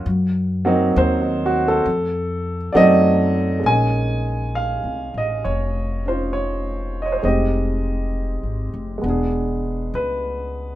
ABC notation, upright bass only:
X:1
M:4/4
L:1/8
Q:"Swing" 1/4=67
K:Fphr
V:1 name="Upright bass" clef=bass
G,,2 E,,2 F,,2 G,,2 | B,,,2- (3B,,, C,, =A,,, F,,,4 | F,,,2- (3F,,, A,,, F,,, =E,,,2 D,,2 |]